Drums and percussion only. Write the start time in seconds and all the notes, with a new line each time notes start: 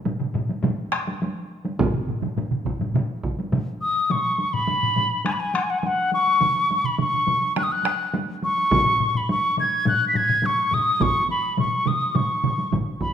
0.06 taiko low-mid, taiko mid, taiko high
0.20 taiko low-mid, taiko mid
0.34 taiko low-mid, taiko mid
0.49 taiko high
0.63 taiko low-mid, taiko mid, taiko high
0.92 taiko rim
1.07 taiko high
1.22 taiko high
1.65 taiko high
1.79 taiko, taiko low-mid, taiko mid, taiko high
1.94 taiko low-mid, taiko mid
2.08 taiko low-mid, taiko mid
2.22 taiko low-mid, taiko mid, taiko high
2.37 taiko low-mid, taiko mid, taiko high
2.51 taiko low-mid, taiko mid
2.65 taiko, taiko low-mid, taiko mid
2.80 taiko low-mid, taiko mid, taiko high
2.94 taiko low-mid, taiko mid, taiko high
3.23 taiko
3.39 taiko high
3.52 taiko low-mid, taiko mid, taiko high
4.10 taiko low-mid, taiko high
4.25 taiko high
4.38 taiko high
4.54 taiko low-mid, taiko high
4.67 taiko low-mid, taiko high
4.82 taiko low-mid, taiko high
4.96 taiko low-mid, taiko high
5.11 taiko high
5.25 taiko rim, taiko high
5.40 taiko high
5.54 taiko rim, taiko high
5.83 taiko high
5.97 taiko high
6.12 taiko high
6.27 taiko high
6.41 taiko mid, taiko high
6.56 taiko high
6.71 taiko high
6.84 taiko mid, taiko high
6.98 taiko mid, taiko high
7.12 taiko mid, taiko high
7.27 taiko mid, taiko high
7.42 taiko high
7.56 taiko rim, taiko high
7.71 taiko high
7.85 taiko rim, taiko high
8.14 taiko high
8.29 taiko high
8.43 taiko high
8.57 taiko high
8.71 taiko, taiko low-mid, taiko high
8.86 taiko low-mid, taiko high
9.00 taiko low-mid
9.14 taiko low-mid, taiko high
9.29 taiko high
9.44 taiko high
9.57 taiko low-mid, taiko high
9.72 taiko high
9.85 taiko low-mid, taiko high
10.00 taiko high
10.14 taiko low-mid, taiko high
10.29 taiko low-mid
10.42 taiko low-mid, taiko high
10.57 taiko high
10.71 taiko low-mid, taiko high
10.86 taiko high
11.00 taiko, taiko low-mid, taiko mid, taiko high
11.15 taiko high
11.29 taiko high
11.43 taiko high
11.57 taiko low-mid, taiko mid, taiko high
11.72 taiko high
11.86 taiko low-mid, taiko mid, taiko high
12.01 taiko high
12.15 taiko low-mid, taiko mid, taiko high
12.29 taiko high
12.44 taiko low-mid, taiko mid, taiko high
12.58 taiko high
12.72 taiko, taiko low-mid, taiko mid, taiko high
12.87 taiko high
13.01 taiko, taiko high